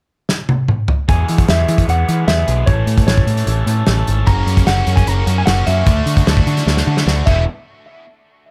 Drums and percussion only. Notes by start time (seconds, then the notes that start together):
0.29 snare
0.49 high tom
0.68 mid tom
0.88 floor tom
1.09 kick, closed hi-hat
1.28 closed hi-hat
1.38 kick, closed hi-hat
1.48 snare, closed hi-hat
1.68 closed hi-hat
1.78 kick, closed hi-hat
1.89 closed hi-hat
2.08 closed hi-hat
2.28 snare, closed hi-hat
2.48 closed hi-hat
2.67 kick, closed hi-hat
2.87 closed hi-hat
2.98 kick, closed hi-hat
3.08 snare, closed hi-hat
3.18 kick
3.27 closed hi-hat
3.37 closed hi-hat
3.47 closed hi-hat
3.67 closed hi-hat
3.86 snare, closed hi-hat
4.07 closed hi-hat
4.27 kick, closed hi-hat
4.48 closed hi-hat
4.57 kick, closed hi-hat
4.67 snare, closed hi-hat
4.87 closed hi-hat
4.97 kick, closed hi-hat
5.07 closed hi-hat
5.27 closed hi-hat
5.47 snare, closed hi-hat
5.67 closed hi-hat
5.86 kick, closed hi-hat
6.07 closed hi-hat
6.17 kick, closed hi-hat
6.27 snare, closed hi-hat
6.37 kick
6.47 closed hi-hat
6.57 snare, closed hi-hat
6.67 snare
6.77 snare
6.97 snare
7.08 snare
7.27 kick, crash